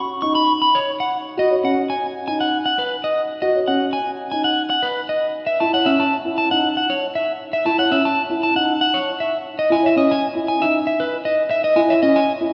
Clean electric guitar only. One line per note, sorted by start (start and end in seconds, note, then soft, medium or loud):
0.22 0.35 C#6 medium
0.35 0.52 B5 medium
0.62 0.78 B5 medium
0.75 0.91 C#5 soft
1.00 1.16 F#5 medium
1.39 1.55 D#5 medium
1.65 1.80 F#5 soft
1.90 2.06 G#5 soft
2.28 2.40 G#5 medium
2.41 2.57 F#5 soft
2.66 2.82 F#5 soft
2.79 2.95 B4 soft
3.04 3.21 D#5 soft
3.42 3.59 D#5 soft
3.68 3.85 F#5 soft
3.93 4.10 G#5 soft
4.32 4.44 G#5 soft
4.44 4.62 F#5 soft
4.70 4.87 F#5 soft
4.83 5.00 B4 soft
5.09 5.26 D#5 soft
5.47 5.64 E5 medium
5.60 5.73 A5 medium
5.74 5.90 F#5 soft
5.86 6.03 E5 medium
6.00 6.16 A5 soft
6.38 6.51 A5 medium
6.51 6.67 F#5 medium
6.77 6.93 F#5 soft
6.90 7.06 C#5 soft
7.15 7.32 E5 soft
7.53 7.70 E5 medium
7.66 7.79 A5 medium
7.79 7.95 F#5 medium
7.92 8.08 E5 medium
8.05 8.21 A5 soft
8.43 8.56 A5 medium
8.56 8.73 F#5 medium
8.81 8.98 F#5 medium
8.94 9.11 C#5 soft
9.20 9.37 E5 soft
9.59 9.75 D#5 medium
9.72 9.88 G#5 medium
9.86 9.97 E5 medium
9.97 10.14 D#5 medium
10.11 10.27 G#5 medium
10.48 10.65 G#5 medium
10.62 10.78 E5 medium
10.87 11.03 E5 medium
11.00 11.16 B4 soft
11.25 11.42 D#5 medium
11.51 11.64 E5 medium
11.64 11.80 D#5 medium
11.76 11.93 G#5 medium
11.90 12.02 E5 medium
12.03 12.19 D#5 medium
12.16 12.32 G#5 soft